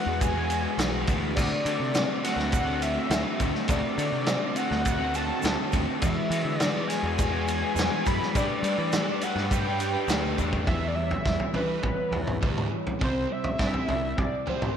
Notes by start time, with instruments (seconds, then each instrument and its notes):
Already playing: clean electric guitar E3, overdriven electric guitar E3 G#3 B3, analog synth lead F#5
0.05 picked electric bass E2, clean electric guitar G#3 B3 F#4
0.20 overdriven electric guitar F#4, analog synth lead G#5, kick, ride, shaker
0.33 clean electric guitar G#3 B3 F#4
0.50 overdriven electric guitar B3, ride, shaker
0.62 clean electric guitar G#3 B3 F#4
0.77 picked electric bass B1, clean electric guitar E3 G#3 B3 F#4, overdriven electric guitar E3, snare, ride, shaker
1.06 picked electric bass D2, clean electric guitar E3 G#3 B3 F#4, overdriven electric guitar G#3, kick, ride, shaker
1.20 clean electric guitar G#3 B3 F#4
1.35 picked electric bass D2, clean electric guitar D3 A3 C4 F#4, overdriven electric guitar D3, analog synth lead D5, kick, crash, shaker
1.64 clean electric guitar D3 A3 C4 F#4, picked electric bass D3, overdriven electric guitar A3, ride, shaker
1.78 picked electric bass C3, clean electric guitar A3 C4 F#4
1.93 clean electric guitar D3 A3 C4 F#4, overdriven electric guitar C4, snare, ride, shaker
2.21 clean electric guitar D3 A3 C4 F#4, overdriven electric guitar A3, analog synth lead F#5, ride, shaker
2.25 snare
2.36 picked electric bass D2, clean electric guitar A3 C4 F#4, snare
2.52 overdriven electric guitar F#4, analog synth lead F#5, kick, ride, shaker
2.64 clean electric guitar A3 C4 F#4
2.82 overdriven electric guitar C4, analog synth lead E5, ride, shaker
2.94 clean electric guitar A3 C4 F#4
3.08 picked electric bass D2, clean electric guitar D3 A3 C4 F#4, overdriven electric guitar D3, snare, ride, shaker
3.37 picked electric bass D2, clean electric guitar D3 A3 C4, overdriven electric guitar A3, kick, ride, shaker
3.42 clean electric guitar F#4
3.53 clean electric guitar A3 C4 F#4, snare
3.67 picked electric bass D2, clean electric guitar D3 A3 C4 F#4, analog synth lead D5, kick, ride, shaker
3.71 overdriven electric guitar D3
3.95 clean electric guitar D3 A3 C4 F#4, picked electric bass D3, ride, shaker
3.99 overdriven electric guitar A3
4.10 picked electric bass C3, clean electric guitar A3 C4 F#4
4.23 clean electric guitar D3 A3 C4 F#4, snare, ride
4.27 overdriven electric guitar C4, shaker
4.53 clean electric guitar D3 A3 C4 F#4, overdriven electric guitar A3, analog synth lead F#5, ride, shaker
4.68 picked electric bass D2, clean electric guitar C4 F#4, snare
4.72 clean electric guitar A3
4.85 overdriven electric guitar F#4, analog synth lead F#5, kick, ride, shaker
4.97 clean electric guitar A3 C4 F#4
5.14 overdriven electric guitar C4, analog synth lead A5, ride, shaker
5.27 clean electric guitar A3 C4 F#4
5.40 picked electric bass D2, clean electric guitar D3 A3 C4 F#4, overdriven electric guitar D3, shaker
5.45 snare, ride
5.70 picked electric bass D#2, clean electric guitar D3 A3 C4 F#4, overdriven electric guitar A3, kick, ride, shaker
5.85 clean electric guitar A3 C4 F#4
5.99 picked electric bass E2, clean electric guitar E3 G#3 B3 F#4, overdriven electric guitar E3, analog synth lead E5, kick, ride, shaker
6.29 clean electric guitar E3 G#3 B3 F#4, picked electric bass E3, overdriven electric guitar G#3, ride, shaker
6.44 picked electric bass D3, clean electric guitar G#3 B3 F#4
6.59 clean electric guitar E3 G#3 B3 F#4, overdriven electric guitar B3, analog synth lead D5, snare, ride, shaker
6.88 clean electric guitar E3 G#3 B3, overdriven electric guitar G#3, analog synth lead G#5, snare, ride, shaker
6.92 clean electric guitar F#4
7.02 picked electric bass E2, clean electric guitar G#3 B3 F#4
7.18 overdriven electric guitar F#4, analog synth lead G#5, kick, ride, shaker
7.31 clean electric guitar G#3 B3 F#4
7.48 overdriven electric guitar B3, ride, shaker
7.60 clean electric guitar G#3 B3 F#4
7.74 picked electric bass E2, clean electric guitar E3 G#3 B3 F#4, overdriven electric guitar E3, shaker
7.79 snare, ride
8.04 picked electric bass F#2, clean electric guitar E3 G#3 B3 F#4, overdriven electric guitar G#3, analog synth lead B5, kick, ride, shaker
8.18 clean electric guitar G#3 B3 F#4
8.23 snare
8.33 picked electric bass G2, clean electric guitar G3 A3 D4 G4 B4, overdriven electric guitar G3, kick, ride, shaker
8.37 analog synth lead D5
8.63 picked electric bass G3, clean electric guitar A3 D4 G4, overdriven electric guitar D4, ride, shaker
8.67 clean electric guitar B4
8.77 picked electric bass E3, clean electric guitar D4 G4 B4
8.93 clean electric guitar G3 A3 D4 G4 B4, overdriven electric guitar G4, snare, ride, shaker
9.21 clean electric guitar A3 D4 G4, overdriven electric guitar D4, analog synth lead F#5, ride, shaker
9.25 clean electric guitar B4
9.36 picked electric bass G2, clean electric guitar D4 G4 B4, snare
9.51 overdriven electric guitar B4, analog synth lead G5, kick, ride, shaker
9.65 clean electric guitar D4 G4 B4
9.80 overdriven electric guitar G4, ride, shaker
9.94 clean electric guitar D4 G4 B4
10.08 picked electric bass D2, clean electric guitar G3 A3 D4 G4 B4, overdriven electric guitar A3, snare, ride, shaker
10.36 picked electric bass E2, clean electric guitar A3 D4 G4 B4, overdriven electric guitar D4, kick, shaker
10.51 clean electric guitar D4 G4 B4, kick
10.65 picked electric bass E2, overdriven electric guitar E3 G3 B3, clean electric guitar E3, analog synth lead E5, kick, floor tom
10.88 analog synth lead D5
10.95 overdriven electric guitar E3 G3, clean electric guitar G3, analog synth lead E5
11.11 floor tom
11.24 picked electric bass E2, overdriven electric guitar E3 G3, clean electric guitar E4, kick, snare
11.40 floor tom
11.53 picked electric bass E3, overdriven electric guitar E3 G3 B3, clean electric guitar G3, analog synth lead B4, floor tom
11.83 overdriven electric guitar E3 G3, clean electric guitar B3, kick, floor tom
12.11 picked electric bass E2, clean electric guitar E3, overdriven electric guitar E3 G3, floor tom
12.27 floor tom, mid tom
12.41 picked electric bass D2, overdriven electric guitar E3 G3 B3, clean electric guitar G3, kick
12.58 mid tom
12.71 clean electric guitar E3, overdriven electric guitar E3 G3
12.87 floor tom
12.99 picked electric bass C2, overdriven electric guitar C3 G3 C4, clean electric guitar C3, kick, floor tom
13.04 analog synth lead C5
13.28 overdriven electric guitar C3 G3, clean electric guitar G3
13.32 analog synth lead E5
13.44 floor tom
13.58 picked electric bass G2, overdriven electric guitar C3 G3 C4, clean electric guitar E4, kick, snare
13.74 floor tom
13.87 picked electric bass C2, overdriven electric guitar C3 G3, clean electric guitar G3, floor tom
14.16 overdriven electric guitar C3 G3, clean electric guitar C4, analog synth lead D5, kick, floor tom
14.46 overdriven electric guitar C3 G3 C4, clean electric guitar C3, analog synth lead C5, floor tom
14.62 floor tom, mid tom